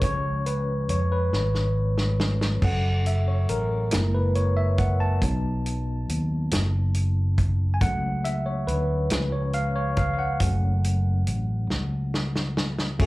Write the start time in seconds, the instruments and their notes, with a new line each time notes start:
0.01 fingered electric bass C#2, tine electric piano F3 G#3 C#4 C#5, kick, closed hi-hat
0.46 tine electric piano B4, closed hi-hat
0.89 fingered electric bass F2, tine electric piano C#5, closed hi-hat
1.12 tine electric piano B4
1.33 fingered electric bass G#1, snare
1.55 snare
1.98 snare
2.19 tine electric piano F3 G#3 C#4, snare
2.41 snare
2.62 fingered electric bass F#1, tine electric piano F#3 C#4 A4 F#5, kick, crash
3.06 tine electric piano E5, closed hi-hat
3.28 tine electric piano C#5
3.49 fingered electric bass A1, tine electric piano A#4, closed hi-hat
3.91 fingered electric bass F#1, tine electric piano G#3 A#3 E4, snare, closed hi-hat
4.14 tine electric piano B4
4.35 tine electric piano C#5, closed hi-hat
4.57 tine electric piano E5
4.78 tine electric piano F#5, kick, closed hi-hat
5.00 tine electric piano A5
5.21 fingered electric bass B1, tine electric piano F#3 B3 D#4, kick, closed hi-hat
5.66 closed hi-hat
6.09 fingered electric bass D#2, closed hi-hat
6.51 fingered electric bass F#1, snare, closed hi-hat
6.94 closed hi-hat
7.38 kick, closed hi-hat
7.74 tine electric piano G#5
7.81 fingered electric bass C#2, tine electric piano F#3 A3 C#4 F#5, kick, closed hi-hat
8.24 tine electric piano E5, closed hi-hat
8.46 tine electric piano C#5
8.67 fingered electric bass D2, tine electric piano B4, closed hi-hat
9.10 fingered electric bass C#2, tine electric piano F3 G#3 C#4, snare, closed hi-hat
9.32 tine electric piano C#5
9.53 tine electric piano F5, closed hi-hat
9.76 tine electric piano C#5
9.97 tine electric piano F5, kick, closed hi-hat
10.14 tine electric piano F5
10.19 tine electric piano F#5
10.40 fingered electric bass F#1, tine electric piano F#3 A3 C#4, kick, closed hi-hat
10.84 closed hi-hat
11.27 fingered electric bass A1, closed hi-hat
11.70 fingered electric bass C#2, snare
12.14 snare
12.36 snare
12.57 snare
12.79 snare
12.99 fingered electric bass F#1, tine electric piano A3 C#4 F#4 G#4, kick, crash